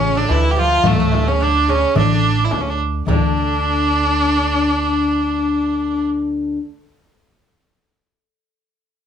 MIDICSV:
0, 0, Header, 1, 6, 480
1, 0, Start_track
1, 0, Tempo, 555042
1, 741, Time_signature, 4, 2, 24, 8
1, 7839, End_track
2, 0, Start_track
2, 0, Title_t, "Violin"
2, 0, Program_c, 0, 40
2, 0, Note_on_c, 0, 61, 91
2, 153, Note_on_c, 0, 62, 81
2, 166, Note_off_c, 0, 61, 0
2, 276, Note_on_c, 0, 64, 79
2, 289, Note_off_c, 0, 62, 0
2, 442, Note_on_c, 0, 67, 58
2, 455, Note_off_c, 0, 64, 0
2, 512, Note_on_c, 0, 65, 91
2, 525, Note_off_c, 0, 67, 0
2, 754, Note_on_c, 0, 57, 77
2, 767, Note_off_c, 0, 65, 0
2, 1111, Note_on_c, 0, 61, 76
2, 1124, Note_off_c, 0, 57, 0
2, 1230, Note_on_c, 0, 62, 82
2, 1243, Note_off_c, 0, 61, 0
2, 1469, Note_on_c, 0, 61, 89
2, 1482, Note_off_c, 0, 62, 0
2, 1706, Note_off_c, 0, 61, 0
2, 1710, Note_on_c, 0, 62, 84
2, 2115, Note_on_c, 0, 64, 58
2, 2128, Note_off_c, 0, 62, 0
2, 2181, Note_on_c, 0, 62, 65
2, 2194, Note_off_c, 0, 64, 0
2, 2259, Note_on_c, 0, 61, 63
2, 2272, Note_off_c, 0, 62, 0
2, 2337, Note_on_c, 0, 62, 59
2, 2350, Note_off_c, 0, 61, 0
2, 2419, Note_off_c, 0, 62, 0
2, 2667, Note_on_c, 0, 62, 83
2, 5243, Note_off_c, 0, 62, 0
2, 7839, End_track
3, 0, Start_track
3, 0, Title_t, "Oud"
3, 0, Program_c, 1, 24
3, 0, Note_on_c, 1, 49, 77
3, 133, Note_on_c, 1, 50, 69
3, 151, Note_off_c, 1, 49, 0
3, 243, Note_off_c, 1, 50, 0
3, 246, Note_on_c, 1, 52, 79
3, 486, Note_off_c, 1, 52, 0
3, 489, Note_on_c, 1, 53, 83
3, 738, Note_on_c, 1, 45, 72
3, 743, Note_off_c, 1, 53, 0
3, 802, Note_off_c, 1, 45, 0
3, 807, Note_on_c, 1, 46, 58
3, 861, Note_off_c, 1, 46, 0
3, 864, Note_on_c, 1, 45, 81
3, 1100, Note_off_c, 1, 45, 0
3, 1103, Note_on_c, 1, 49, 60
3, 1215, Note_on_c, 1, 50, 80
3, 1226, Note_off_c, 1, 49, 0
3, 1457, Note_on_c, 1, 49, 71
3, 1466, Note_off_c, 1, 50, 0
3, 1688, Note_on_c, 1, 50, 68
3, 1707, Note_off_c, 1, 49, 0
3, 2072, Note_off_c, 1, 50, 0
3, 2668, Note_on_c, 1, 50, 81
3, 5680, Note_off_c, 1, 50, 0
3, 7839, End_track
4, 0, Start_track
4, 0, Title_t, "Upright bass"
4, 0, Program_c, 2, 32
4, 0, Note_on_c, 2, 33, 84
4, 204, Note_off_c, 2, 33, 0
4, 256, Note_on_c, 2, 38, 82
4, 679, Note_off_c, 2, 38, 0
4, 738, Note_on_c, 2, 38, 85
4, 1581, Note_off_c, 2, 38, 0
4, 1699, Note_on_c, 2, 33, 82
4, 2122, Note_off_c, 2, 33, 0
4, 2180, Note_on_c, 2, 38, 80
4, 2602, Note_off_c, 2, 38, 0
4, 2661, Note_on_c, 2, 38, 92
4, 5673, Note_off_c, 2, 38, 0
4, 7839, End_track
5, 0, Start_track
5, 0, Title_t, "Darbuka"
5, 253, Note_on_c, 9, 63, 65
5, 340, Note_off_c, 9, 63, 0
5, 374, Note_on_c, 9, 62, 25
5, 460, Note_off_c, 9, 62, 0
5, 723, Note_on_c, 9, 64, 82
5, 810, Note_off_c, 9, 64, 0
5, 970, Note_on_c, 9, 63, 56
5, 1057, Note_off_c, 9, 63, 0
5, 1694, Note_on_c, 9, 64, 91
5, 1781, Note_off_c, 9, 64, 0
5, 1814, Note_on_c, 9, 62, 23
5, 1901, Note_off_c, 9, 62, 0
5, 2172, Note_on_c, 9, 63, 65
5, 2259, Note_off_c, 9, 63, 0
5, 2419, Note_on_c, 9, 62, 22
5, 2505, Note_off_c, 9, 62, 0
5, 2540, Note_on_c, 9, 62, 22
5, 2626, Note_off_c, 9, 62, 0
5, 2652, Note_on_c, 9, 64, 74
5, 2739, Note_off_c, 9, 64, 0
5, 7839, End_track
6, 0, Start_track
6, 0, Title_t, "Frame drum"
6, 254, Note_on_c, 9, 64, 70
6, 340, Note_off_c, 9, 64, 0
6, 724, Note_on_c, 9, 64, 95
6, 810, Note_off_c, 9, 64, 0
6, 978, Note_on_c, 9, 64, 74
6, 1065, Note_off_c, 9, 64, 0
6, 1691, Note_on_c, 9, 64, 84
6, 1778, Note_off_c, 9, 64, 0
6, 2183, Note_on_c, 9, 64, 72
6, 2269, Note_off_c, 9, 64, 0
6, 2663, Note_on_c, 9, 64, 75
6, 2750, Note_off_c, 9, 64, 0
6, 7839, End_track
0, 0, End_of_file